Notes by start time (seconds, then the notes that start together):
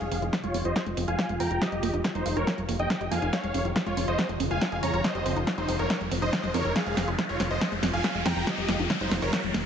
Already playing: C3 F3 G#3 F4 G#4 F5, riser
0.01 F1 G#3, closed hi-hat
0.11 F1 C4, open hi-hat
0.22 F1 F4, closed hi-hat
0.33 F3, kick, snare, closed hi-hat
0.43 F1 G#3 F4 C#5, closed hi-hat
0.54 F1 C4, open hi-hat
0.65 F1 F4 C5 D#5, closed hi-hat
0.76 F3, kick, snare, closed hi-hat
0.86 F1 G#3, closed hi-hat
0.97 F1 C4, open hi-hat
1.08 F1 F4 F5 G#5, closed hi-hat
1.19 F3, kick, snare, closed hi-hat
1.29 F1 G#3, closed hi-hat
1.40 F2 C4 G5 A#5, open hi-hat
1.51 F1 F4, closed hi-hat
1.61 D#3 G3 A#3 G4 D#5, kick, snare, closed hi-hat
1.72 F1 G3, closed hi-hat
1.83 F1 A#3, open hi-hat
1.93 F1 D#4, closed hi-hat
2.04 D#3, kick, snare, closed hi-hat
2.15 F1 G3 D#4 C5, closed hi-hat
2.26 F1 A#3, open hi-hat
2.36 F1 D#4 A#4 C#5, closed hi-hat
2.47 D#3, kick, snare, closed hi-hat
2.58 F1 G3, closed hi-hat
2.69 F1 A#3, open hi-hat
2.79 F1 D#4 D#5 G5, closed hi-hat
2.90 D#3, kick, snare, closed hi-hat
3.01 F1 G3, closed hi-hat
3.11 F2 A#3 F5 G#5, open hi-hat
3.22 F1 D#4, closed hi-hat
3.33 C#3 F3 G#3 F4 C#5 F5, kick, snare, closed hi-hat
3.44 F1 G#3, closed hi-hat
3.54 F1 C#4, open hi-hat
3.65 F1 F4, closed hi-hat
3.76 F3, kick, snare, closed hi-hat
3.86 F1 G#3 F4 C#5, closed hi-hat
3.97 F1 C#4, open hi-hat
4.08 F1 F4 C5 D#5, closed hi-hat
4.18 F3, kick, snare, closed hi-hat
4.29 F1 G#3, closed hi-hat
4.40 F1 C#4, open hi-hat
4.51 F1 F4 F5 G#5, closed hi-hat
4.61 F3, kick, snare, closed hi-hat
4.72 F1 G#3, closed hi-hat
4.83 F2 C#4 C#5 A#5, open hi-hat
4.94 F1 F4, closed hi-hat
5.04 C3 D#3 G3 D#4 C5 D#5, kick, snare, closed hi-hat
5.15 F1 G3, closed hi-hat
5.26 F1 C4, open hi-hat
5.36 F1 D#4, closed hi-hat
5.47 D#3, kick, snare, closed hi-hat
5.58 F1 G3 D#4 C5, closed hi-hat
5.68 F1 C4, open hi-hat
5.79 F1 D#4 A#4 C#5, closed hi-hat
5.90 D#3, kick, snare, closed hi-hat
6.01 F1 G3, closed hi-hat
6.11 F1 C4, open hi-hat
6.22 F1 D#4 C5 D#5, closed hi-hat
6.33 D#3, kick, snare, closed hi-hat
6.43 F1 G3, closed hi-hat
6.54 F2 C4 A#4 C#5, open hi-hat
6.65 F1 D#4, closed hi-hat
6.76 F3 G#3 F4 G#4 F5, kick, snare, closed hi-hat
6.86 F1 G#3, closed hi-hat
6.97 F1 C4, snare, open hi-hat
7.08 F1 F4, closed hi-hat
7.19 F3, kick, snare, closed hi-hat
7.29 F1 G#3 F4 C#5, closed hi-hat
7.40 F1 C4, snare, open hi-hat
7.51 F1 F4 C5 D#5, closed hi-hat
7.61 F3, kick, snare, closed hi-hat
7.72 F1 G#3, closed hi-hat
7.83 F1 C4, snare, open hi-hat
7.93 F1 F4 F5 G#5, closed hi-hat
8.04 F3, kick, snare, closed hi-hat
8.15 F1 G#3, closed hi-hat
8.26 F2 C4 G5 A#5, snare, open hi-hat
8.36 F1 F4, closed hi-hat
8.47 D#3 G3 A#3 G4 D#5, kick, snare, closed hi-hat
8.58 F1 G3, closed hi-hat
8.69 F1 A#3, snare, open hi-hat
8.79 F1 D#4, closed hi-hat
8.90 D#3, kick, snare, closed hi-hat
9.01 F1 G3 D#4 C5, closed hi-hat
9.11 F1 A#3, snare, open hi-hat
9.22 F1 D#4 A#4 C#5, closed hi-hat
9.33 D#3, kick, snare, closed hi-hat
9.44 F1 G3, closed hi-hat
9.54 F1 A#3, snare, open hi-hat